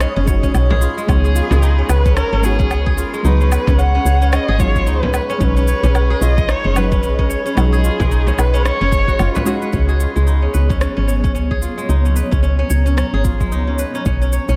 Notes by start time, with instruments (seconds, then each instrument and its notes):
Already playing: synth stab F#3 G#3 C#4 D#4, kora G#3 D#4 F4 G#4 B4, ambient pad G#4 D#5 B5 D#6
0.00 kora C#4, cross-stick, shaker
0.16 fm bass F#1, kora C#4
0.25 synth stab G#3 C#4 D#4 F#4, kora C#5, kick, shaker
0.43 kora C#4, kick, shaker
0.54 fm bass B1, kora C#4, low woodblock, shaker
0.70 kora G#4, frame drum
0.81 kora F4, shaker
0.97 kora G#3, shaker
1.07 fm bass C#2, synth stab G#3 B3 D#4, kora C#4, kamancheh G#4, ambient pad G#4 C#6, kick, low woodblock, shaker
1.11 synth stab F#3
1.24 kora G#4, shaker
1.35 kora F4, shaker
1.51 fm bass C#2, kora G#3, frame drum, shaker
1.62 kora D#4, shaker
1.79 kora C#4
1.89 fm bass C#2, kora B4, kamancheh B4, low woodblock, shaker
2.06 kora C#4, kick, shaker
2.16 kora C#4, kamancheh A#4, cross-stick, shaker
2.33 fm bass G#1, kora C#4
2.41 synth stab G#3 B3 D#4, kamancheh G#4, kora C#5, shaker
2.46 synth stab F#4
2.59 kora C#4, kick, shaker
2.70 fm bass C#2, kora C#4, low woodblock, shaker
2.86 kora G#4, kick
2.97 kora F4, shaker
3.13 kora G#3, shaker
3.23 fm bass C#2, synth stab F#3 G#3 B3 D#4, kora D#4, kamancheh B4, shaker
3.41 kora C#4, shaker
3.52 kora B4, low woodblock, shaker
3.67 fm bass C#2, kora C#4, kick, frame drum, shaker
3.78 kora C#4, kamancheh F#5, shaker
3.95 kora C#4
4.05 fm bass C#2, kora C#5, shaker
4.22 kora C#4, shaker
4.33 kora C#4, kamancheh D#5, cross-stick, low woodblock, shaker
4.48 fm bass G#1, kora G#4
4.58 synth stab F#3 G#3 B3 D#4, kora F4, kamancheh C#5, kick, shaker
4.76 kora G#3, kick, shaker
4.87 fm bass C#2, kora D#4, kamancheh B4, shaker
5.03 kora C#4, frame drum
5.14 kora B4, low woodblock, shaker
5.30 kora C#4, shaker
5.38 fm bass B1, synth stab G#3 C#4 D#4, kora C#4, kamancheh B4, ambient pad D#5 B5, kick, shaker
5.42 synth stab F#3
5.57 kora C#4, shaker
5.68 kora C#5, shaker
5.83 fm bass B1, kora C#4, frame drum, shaker
5.95 kora C#4, low woodblock, shaker
6.10 kora G#4
6.21 fm bass B1, kora F4, kamancheh D#5, shaker
6.37 kora G#3, kick, shaker
6.48 kora D#4, kamancheh C#5, cross-stick, shaker
6.64 fm bass F#1, kora C#4
6.73 synth stab F#3 G#3 C#4 D#4, kora B4, low woodblock, shaker
6.78 kamancheh B4
6.92 kora C#4, kick, shaker
7.03 fm bass B1, kora C#4, shaker
7.19 kora C#4, kick
7.29 kora C#5, shaker
7.46 kora C#4, shaker
7.55 fm bass B1, synth stab G#3 C#4 D#4, kora C#4, kamancheh G#4, low woodblock, shaker
7.59 synth stab F#3
7.72 kora G#4, shaker
7.84 kora F4, shaker
8.00 fm bass B1, kora G#3, kick, frame drum, shaker
8.11 kora D#4, shaker
8.27 kora C#4, frame drum, shaker
8.38 fm bass B1, kora B4, kamancheh B4, low woodblock, shaker
8.54 kora C#4, shaker
8.65 kora C#4, kamancheh C#5, cross-stick, shaker
8.81 fm bass F#1, kora C#4
8.92 kora C#5, kick, shaker
9.08 kora F#4, kick, shaker
9.19 fm bass F#1, kora F4, low woodblock, shaker
9.35 kora B4, frame drum, shaker
9.45 synth stab G#3 C#4 D#4 F#4, kora G#4, shaker
9.62 kora B4, shaker
9.73 fm bass C#2, ambient pad F#3 B3 G#4 C#5, kora C#4, kick, shaker
9.89 kora G#4, shaker
10.00 kora F4, shaker
10.16 fm bass C#2, kora G#3, shaker
10.27 kora D#4, shaker
10.42 kora C#4
10.54 fm bass C#2, kora B4, shaker
10.70 kora C#4, kick, shaker
10.81 kora C#4, cross-stick, shaker
10.97 fm bass G#1, kora C#4
11.08 kora C#5, shaker
11.24 kora C#4, kick, shaker
11.35 fm bass C#2, kora C#4, shaker
11.51 kora G#4, kick
11.62 kora F4, shaker
11.78 kora G#3, shaker
11.89 fm bass C#2, kora D#4, ambient pad A#5, shaker
12.05 kora C#4, shaker
12.16 kora B4, shaker
12.31 fm bass C#2, kora C#4, kick, shaker
12.43 kora C#4, shaker
12.59 kora C#4
12.70 fm bass C#2, kora C#5, shaker
12.86 kora C#4, shaker
12.97 kora C#4, cross-stick, shaker
13.13 fm bass G#1, kora G#4
13.24 kora F4, kick, shaker
13.40 kora G#3, kick, shaker
13.52 fm bass C#2, kora D#4, shaker
13.67 kora C#4
13.79 kora B4, shaker
13.95 kora C#4, shaker
14.05 fm bass B1, ambient pad B3 D#4 G#4, kora C#4, kick, shaker
14.22 kora C#4, shaker
14.33 kora C#5, shaker
14.49 fm bass B1, kora C#4, shaker